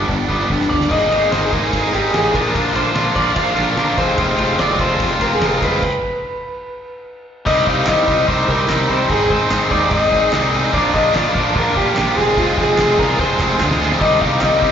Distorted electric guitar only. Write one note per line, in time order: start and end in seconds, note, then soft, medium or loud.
0.00 0.29 G2 medium
0.00 0.27 G3 medium
0.00 0.70 D4 medium
0.08 0.49 B3 medium
0.29 0.90 G3 medium
0.50 0.91 B3 medium
0.70 0.91 G4 medium
0.91 1.31 G#3 medium
0.91 1.13 A#3 medium
0.91 1.12 D#4 medium
0.91 1.10 G#4 loud
1.11 1.33 A#3 medium
1.11 1.32 D#4 medium
1.11 1.33 G#4 medium
1.32 1.53 G#3 medium
1.32 1.53 A#3 medium
1.32 1.52 D#4 medium
1.32 1.51 G#4 medium
1.52 1.71 G#3 medium
1.52 1.72 A#3 medium
1.52 1.72 D#4 medium
1.52 1.73 G#4 medium
1.72 1.94 G#3 medium
1.72 1.93 A#3 medium
1.72 1.92 D#4 medium
1.72 1.91 G#4 medium
1.92 2.12 G#3 medium
1.92 2.12 A#3 medium
1.92 2.13 D#4 medium
1.92 2.14 G#4 medium
2.13 2.33 G#3 medium
2.13 2.33 A#3 medium
2.13 2.33 D#4 medium
2.13 2.33 G#4 medium
2.33 2.52 A#2 medium
2.33 2.52 D3 medium
2.33 2.53 A#3 medium
2.33 2.54 D4 medium
2.33 2.55 F4 medium
2.53 2.95 A#2 medium
2.53 2.93 D3 loud
2.53 2.74 A#3 medium
2.53 2.74 D4 medium
2.53 2.73 F4 loud
2.73 2.94 A#3 medium
2.73 2.95 D4 medium
2.73 2.96 F4 medium
2.94 3.16 D3 medium
2.94 3.15 A#3 medium
2.94 3.14 D4 medium
2.94 3.14 F4 medium
3.15 3.57 A#2 medium
3.15 3.34 D3 medium
3.15 3.35 A#3 medium
3.15 3.36 D4 medium
3.15 3.36 F4 medium
3.35 3.57 D3 medium
3.35 3.56 A#3 medium
3.35 3.56 D4 medium
3.35 3.55 F4 medium
3.56 3.98 A#2 medium
3.56 3.76 D3 medium
3.56 3.77 A#3 medium
3.56 3.78 D4 medium
3.56 3.79 F4 medium
3.77 3.97 D3 medium
3.77 3.97 A#3 medium
3.77 3.98 D4 medium
3.77 3.97 F4 medium
3.99 4.17 F2 medium
3.99 4.18 C3 medium
3.99 4.18 F3 medium
3.99 4.18 G#3 loud
3.99 4.19 C4 medium
3.99 4.19 F4 loud
4.18 4.59 F2 medium
4.18 4.60 C3 medium
4.18 4.40 F3 medium
4.18 4.39 G#3 loud
4.18 4.38 C4 loud
4.18 4.37 F4 loud
4.38 4.57 F3 medium
4.38 4.59 G#3 medium
4.38 4.59 C4 medium
4.38 4.60 F4 medium
4.59 4.79 F3 medium
4.59 4.79 G#3 medium
4.59 4.79 C4 medium
4.59 4.78 F4 medium
4.79 5.22 F2 medium
4.79 5.21 C3 medium
4.79 4.98 F3 medium
4.79 4.99 G#3 medium
4.79 5.00 C4 medium
4.79 5.01 F4 medium
5.00 5.21 F3 medium
5.00 5.20 G#3 medium
5.00 5.20 C4 medium
5.00 5.19 F4 medium
5.21 5.63 F2 medium
5.21 5.63 C3 medium
5.21 5.40 F3 medium
5.21 5.41 G#3 medium
5.21 5.41 C4 medium
5.21 5.42 F4 medium
5.41 5.63 F3 medium
5.41 5.62 G#3 medium
5.41 5.62 C4 medium
5.41 5.61 F4 medium
5.62 5.82 F3 medium
5.62 5.82 G#3 medium
5.62 5.82 C4 medium
5.62 5.81 F4 medium
7.46 7.65 C3 medium
7.46 7.66 G3 medium
7.46 7.67 C4 loud
7.46 7.67 D#4 loud
7.46 7.67 G4 loud
7.66 7.86 C3 medium
7.66 7.86 G3 medium
7.66 7.88 C4 medium
7.66 7.88 D#4 loud
7.66 7.87 G4 loud
7.87 8.06 C3 medium
7.87 8.06 G3 medium
7.87 8.08 C4 medium
7.87 8.08 D#4 loud
7.87 8.08 G4 medium
8.07 8.27 C3 medium
8.07 8.27 G3 medium
8.07 8.28 C4 medium
8.07 8.28 D#4 medium
8.07 8.28 G4 medium
8.28 8.46 C3 medium
8.28 8.47 G3 loud
8.28 8.47 C4 medium
8.28 8.48 D#4 medium
8.28 8.48 G4 loud
8.48 8.68 C3 medium
8.48 8.69 G3 medium
8.48 8.69 C4 loud
8.48 8.69 D#4 medium
8.48 8.69 G4 loud
8.69 8.88 C3 medium
8.69 8.88 G3 medium
8.69 8.89 C4 medium
8.69 8.89 D#4 medium
8.69 8.89 G4 medium
8.89 9.09 C3 medium
8.89 9.09 G3 medium
8.89 9.09 C4 medium
8.89 9.09 D#4 loud
8.89 9.09 G4 loud
9.10 9.29 G#2 medium
9.10 9.30 D#3 medium
9.10 9.30 G#3 medium
9.10 9.30 C4 loud
9.10 9.30 D#4 loud
9.10 9.31 G#4 loud
9.30 9.49 G#2 medium
9.30 9.50 D#3 medium
9.30 9.50 G#3 loud
9.30 9.51 C4 medium
9.30 9.51 D#4 medium
9.30 9.51 G#4 medium
9.51 9.69 G#2 medium
9.51 9.70 D#3 medium
9.51 9.71 G#3 medium
9.51 9.71 C4 medium
9.51 9.71 D#4 loud
9.51 9.71 G#4 loud
9.71 9.90 G#2 medium
9.71 9.91 D#3 loud
9.71 9.91 G#3 medium
9.71 9.91 C4 medium
9.71 9.92 D#4 loud
9.71 9.92 G#4 loud
9.91 10.11 G#2 medium
9.91 10.12 D#3 loud
9.91 10.12 G#3 medium
9.91 10.12 C4 medium
9.91 10.13 D#4 loud
9.91 10.13 G#4 medium
10.12 10.32 G#2 medium
10.12 10.33 D#3 medium
10.12 10.33 G#3 medium
10.12 10.33 C4 medium
10.12 10.34 D#4 medium
10.12 10.34 G#4 loud
10.34 10.52 G#2 medium
10.34 10.53 D#3 medium
10.34 10.53 G#3 medium
10.34 10.54 C4 medium
10.34 10.54 D#4 medium
10.34 10.54 G#4 loud
10.54 10.73 G#2 medium
10.54 10.73 D#3 loud
10.54 10.73 G#3 loud
10.54 10.74 C4 loud
10.54 10.73 D#4 medium
10.54 10.74 G#4 medium
10.74 10.93 A#2 medium
10.74 10.93 D3 loud
10.74 10.95 F3 medium
10.74 10.94 A#3 loud
10.74 10.94 D4 loud
10.74 10.95 A#4 loud
10.94 11.13 A#2 medium
10.94 11.14 D3 medium
10.94 11.15 F3 loud
10.94 11.15 A#3 loud
10.94 11.15 D4 loud
10.94 11.16 A#4 medium
11.15 11.33 A#2 medium
11.15 11.34 D3 medium
11.15 11.35 F3 medium
11.15 11.35 A#3 medium
11.15 11.35 D4 loud
11.15 11.36 A#4 loud
11.35 11.54 A#2 loud
11.35 11.55 D3 medium
11.35 11.55 F3 medium
11.35 11.55 A#3 loud
11.35 11.56 D4 medium
11.35 11.56 A#4 medium
11.56 11.74 A#2 loud
11.56 11.75 D3 medium
11.56 11.75 F3 loud
11.56 11.75 A#3 loud
11.56 11.76 D4 medium
11.56 11.76 A#4 medium
11.75 11.94 A#2 medium
11.75 11.94 D3 loud
11.75 11.95 F3 medium
11.75 11.95 A#3 medium
11.75 11.95 D4 medium
11.75 11.96 A#4 medium
11.95 12.15 A#2 medium
11.95 12.15 D3 medium
11.95 12.15 F3 medium
11.95 12.16 A#3 medium
11.95 12.16 D4 medium
11.95 12.16 A#4 medium
12.16 12.36 F3 loud
12.16 12.37 C4 loud
12.16 12.36 F4 loud
12.16 12.37 G#4 loud
12.37 12.56 F3 loud
12.37 12.58 C4 loud
12.37 12.57 F4 loud
12.37 12.58 G#4 loud
12.58 12.76 F3 medium
12.58 12.78 C4 medium
12.58 12.78 F4 medium
12.58 12.78 G#4 loud
12.78 12.97 F3 medium
12.78 12.98 C4 medium
12.78 12.98 F4 medium
12.78 12.98 G#4 medium
12.98 13.17 F3 medium
12.98 13.19 C4 medium
12.98 13.18 F4 loud
12.98 13.18 G#4 medium
13.18 13.39 F3 medium
13.18 13.40 C4 loud
13.18 13.40 F4 medium
13.18 13.40 G#4 medium
13.40 13.59 F3 medium
13.40 13.61 C4 medium
13.40 13.61 F4 medium
13.40 13.61 G#4 medium
13.61 13.80 F3 medium
13.61 13.81 C4 medium
13.61 13.81 F4 medium
13.61 13.81 G#4 medium
13.81 14.00 F3 medium
13.81 14.02 C4 medium
13.81 14.00 F4 medium
13.81 14.01 G#4 medium
14.02 14.21 C3 medium
14.02 14.21 G3 medium
14.02 14.22 C4 loud
14.02 14.22 D#4 loud
14.02 14.22 G4 loud
14.22 14.41 C3 medium
14.22 14.41 G3 loud
14.22 14.43 C4 medium
14.22 14.43 D#4 medium
14.22 14.42 G4 loud
14.42 14.61 C3 medium
14.42 14.62 G3 medium
14.42 14.63 C4 medium
14.42 14.63 D#4 medium
14.42 14.62 G4 loud
14.62 14.72 C3 medium
14.62 14.72 G3 medium
14.62 14.72 C4 medium
14.62 14.72 D#4 medium
14.62 14.72 G4 medium